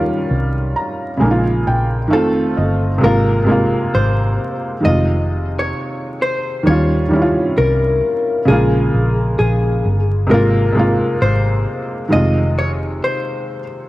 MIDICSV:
0, 0, Header, 1, 4, 480
1, 0, Start_track
1, 0, Tempo, 909091
1, 1601, Time_signature, 4, 2, 24, 8
1, 7332, End_track
2, 0, Start_track
2, 0, Title_t, "Hollow-body jazz guitar"
2, 0, Program_c, 0, 26
2, 0, Note_on_c, 0, 70, 95
2, 1105, Note_off_c, 0, 70, 0
2, 1126, Note_on_c, 0, 69, 96
2, 1603, Note_off_c, 0, 69, 0
2, 1605, Note_on_c, 0, 70, 110
2, 2062, Note_off_c, 0, 70, 0
2, 2083, Note_on_c, 0, 72, 96
2, 2559, Note_off_c, 0, 72, 0
2, 2561, Note_on_c, 0, 75, 96
2, 2929, Note_off_c, 0, 75, 0
2, 2952, Note_on_c, 0, 73, 89
2, 3261, Note_off_c, 0, 73, 0
2, 3284, Note_on_c, 0, 72, 103
2, 3505, Note_off_c, 0, 72, 0
2, 3520, Note_on_c, 0, 73, 105
2, 4001, Note_on_c, 0, 70, 90
2, 4015, Note_off_c, 0, 73, 0
2, 4460, Note_off_c, 0, 70, 0
2, 4479, Note_on_c, 0, 68, 92
2, 4952, Note_off_c, 0, 68, 0
2, 4958, Note_on_c, 0, 68, 88
2, 5442, Note_off_c, 0, 68, 0
2, 5444, Note_on_c, 0, 70, 100
2, 5901, Note_off_c, 0, 70, 0
2, 5923, Note_on_c, 0, 72, 104
2, 6399, Note_off_c, 0, 72, 0
2, 6401, Note_on_c, 0, 75, 93
2, 6642, Note_off_c, 0, 75, 0
2, 6644, Note_on_c, 0, 73, 92
2, 6709, Note_off_c, 0, 73, 0
2, 6885, Note_on_c, 0, 72, 79
2, 7332, Note_off_c, 0, 72, 0
2, 7332, End_track
3, 0, Start_track
3, 0, Title_t, "Felt piano"
3, 0, Program_c, 1, 0
3, 0, Control_c, 1, 64, 127
3, 0, Note_on_c, 1, 51, 81
3, 0, Note_on_c, 1, 55, 74
3, 0, Note_on_c, 1, 61, 67
3, 0, Note_on_c, 1, 65, 95
3, 401, Note_on_c, 1, 82, 65
3, 579, Note_off_c, 1, 51, 0
3, 586, Note_off_c, 1, 55, 0
3, 591, Note_off_c, 1, 61, 0
3, 598, Note_off_c, 1, 65, 0
3, 620, Note_on_c, 1, 49, 84
3, 624, Note_off_c, 1, 82, 0
3, 632, Note_on_c, 1, 56, 75
3, 638, Note_on_c, 1, 80, 64
3, 645, Note_on_c, 1, 58, 68
3, 648, Control_c, 1, 64, 0
3, 657, Note_on_c, 1, 63, 67
3, 691, Note_on_c, 1, 65, 94
3, 692, Note_off_c, 1, 63, 0
3, 738, Control_c, 1, 64, 127
3, 863, Note_off_c, 1, 80, 0
3, 883, Note_on_c, 1, 79, 76
3, 1037, Note_off_c, 1, 49, 0
3, 1044, Note_off_c, 1, 56, 0
3, 1050, Note_off_c, 1, 58, 0
3, 1073, Note_off_c, 1, 65, 0
3, 1098, Note_on_c, 1, 51, 81
3, 1105, Note_off_c, 1, 79, 0
3, 1111, Note_on_c, 1, 57, 82
3, 1115, Note_on_c, 1, 77, 68
3, 1123, Note_on_c, 1, 60, 86
3, 1127, Control_c, 1, 64, 0
3, 1136, Note_on_c, 1, 65, 96
3, 1211, Control_c, 1, 64, 127
3, 1341, Note_off_c, 1, 77, 0
3, 1358, Note_on_c, 1, 75, 67
3, 1517, Note_off_c, 1, 51, 0
3, 1523, Note_off_c, 1, 57, 0
3, 1529, Note_off_c, 1, 60, 0
3, 1535, Note_off_c, 1, 65, 0
3, 1575, Note_on_c, 1, 48, 93
3, 1582, Note_off_c, 1, 75, 0
3, 1588, Note_on_c, 1, 56, 85
3, 1600, Note_on_c, 1, 58, 80
3, 1608, Control_c, 1, 64, 0
3, 1612, Note_on_c, 1, 65, 92
3, 1714, Control_c, 1, 64, 127
3, 1769, Note_off_c, 1, 48, 0
3, 1776, Note_off_c, 1, 56, 0
3, 1782, Note_off_c, 1, 58, 0
3, 1788, Note_off_c, 1, 65, 0
3, 1819, Note_on_c, 1, 48, 80
3, 1829, Note_on_c, 1, 56, 87
3, 1842, Note_on_c, 1, 58, 84
3, 1854, Note_on_c, 1, 65, 92
3, 2497, Note_off_c, 1, 48, 0
3, 2503, Note_off_c, 1, 56, 0
3, 2509, Note_off_c, 1, 58, 0
3, 2515, Note_off_c, 1, 65, 0
3, 2537, Note_on_c, 1, 51, 64
3, 2550, Note_on_c, 1, 56, 68
3, 2561, Note_on_c, 1, 48, 67
3, 2568, Control_c, 1, 64, 0
3, 2573, Note_on_c, 1, 65, 66
3, 2648, Control_c, 1, 64, 127
3, 3329, Note_off_c, 1, 51, 0
3, 3335, Note_off_c, 1, 56, 0
3, 3341, Note_off_c, 1, 48, 0
3, 3346, Note_off_c, 1, 65, 0
3, 3500, Note_on_c, 1, 51, 74
3, 3513, Note_on_c, 1, 55, 70
3, 3525, Note_on_c, 1, 61, 65
3, 3528, Control_c, 1, 64, 0
3, 3537, Note_on_c, 1, 65, 85
3, 3624, Control_c, 1, 64, 127
3, 3692, Note_off_c, 1, 51, 0
3, 3698, Note_off_c, 1, 55, 0
3, 3704, Note_off_c, 1, 61, 0
3, 3711, Note_off_c, 1, 65, 0
3, 3740, Note_on_c, 1, 51, 73
3, 3752, Note_on_c, 1, 55, 71
3, 3764, Note_on_c, 1, 61, 71
3, 3776, Note_on_c, 1, 64, 68
3, 3810, Note_on_c, 1, 65, 81
3, 3811, Note_off_c, 1, 64, 0
3, 4418, Note_off_c, 1, 51, 0
3, 4424, Note_off_c, 1, 55, 0
3, 4430, Note_off_c, 1, 61, 0
3, 4453, Note_off_c, 1, 65, 0
3, 4464, Note_on_c, 1, 49, 92
3, 4476, Note_on_c, 1, 56, 82
3, 4487, Control_c, 1, 64, 0
3, 4487, Note_on_c, 1, 58, 86
3, 4500, Note_on_c, 1, 65, 94
3, 4577, Control_c, 1, 64, 127
3, 5252, Note_off_c, 1, 49, 0
3, 5258, Note_off_c, 1, 56, 0
3, 5264, Note_off_c, 1, 58, 0
3, 5270, Note_off_c, 1, 65, 0
3, 5421, Note_on_c, 1, 48, 91
3, 5432, Note_on_c, 1, 56, 81
3, 5445, Note_on_c, 1, 58, 86
3, 5448, Control_c, 1, 64, 0
3, 5458, Note_on_c, 1, 65, 110
3, 5537, Control_c, 1, 64, 127
3, 5612, Note_off_c, 1, 48, 0
3, 5618, Note_off_c, 1, 56, 0
3, 5624, Note_off_c, 1, 58, 0
3, 5631, Note_off_c, 1, 65, 0
3, 5660, Note_on_c, 1, 48, 84
3, 5674, Note_on_c, 1, 56, 85
3, 5685, Note_on_c, 1, 58, 76
3, 5697, Note_on_c, 1, 65, 97
3, 6338, Note_off_c, 1, 48, 0
3, 6345, Note_off_c, 1, 56, 0
3, 6350, Note_off_c, 1, 58, 0
3, 6356, Note_off_c, 1, 65, 0
3, 6380, Note_on_c, 1, 51, 71
3, 6390, Note_on_c, 1, 56, 75
3, 6404, Note_on_c, 1, 48, 71
3, 6407, Control_c, 1, 64, 0
3, 6417, Note_on_c, 1, 65, 72
3, 6494, Control_c, 1, 64, 127
3, 7170, Note_off_c, 1, 51, 0
3, 7175, Note_off_c, 1, 56, 0
3, 7182, Note_off_c, 1, 48, 0
3, 7188, Note_off_c, 1, 65, 0
3, 7332, End_track
4, 0, Start_track
4, 0, Title_t, "Fingered electric bass"
4, 0, Program_c, 2, 33
4, 163, Note_on_c, 2, 36, 94
4, 388, Note_off_c, 2, 36, 0
4, 642, Note_on_c, 2, 34, 91
4, 867, Note_off_c, 2, 34, 0
4, 884, Note_on_c, 2, 34, 77
4, 1123, Note_off_c, 2, 34, 0
4, 1123, Note_on_c, 2, 29, 95
4, 1348, Note_off_c, 2, 29, 0
4, 1363, Note_on_c, 2, 31, 88
4, 1588, Note_off_c, 2, 31, 0
4, 1603, Note_on_c, 2, 32, 92
4, 1970, Note_off_c, 2, 32, 0
4, 2083, Note_on_c, 2, 32, 95
4, 2308, Note_off_c, 2, 32, 0
4, 2562, Note_on_c, 2, 29, 102
4, 3020, Note_off_c, 2, 29, 0
4, 3523, Note_on_c, 2, 39, 94
4, 3890, Note_off_c, 2, 39, 0
4, 4004, Note_on_c, 2, 36, 94
4, 4228, Note_off_c, 2, 36, 0
4, 4483, Note_on_c, 2, 34, 100
4, 4708, Note_off_c, 2, 34, 0
4, 4722, Note_on_c, 2, 34, 74
4, 4948, Note_off_c, 2, 34, 0
4, 4961, Note_on_c, 2, 34, 93
4, 5187, Note_off_c, 2, 34, 0
4, 5202, Note_on_c, 2, 31, 98
4, 5427, Note_off_c, 2, 31, 0
4, 5443, Note_on_c, 2, 32, 98
4, 5810, Note_off_c, 2, 32, 0
4, 5922, Note_on_c, 2, 32, 102
4, 6147, Note_off_c, 2, 32, 0
4, 6404, Note_on_c, 2, 29, 105
4, 6861, Note_off_c, 2, 29, 0
4, 7332, End_track
0, 0, End_of_file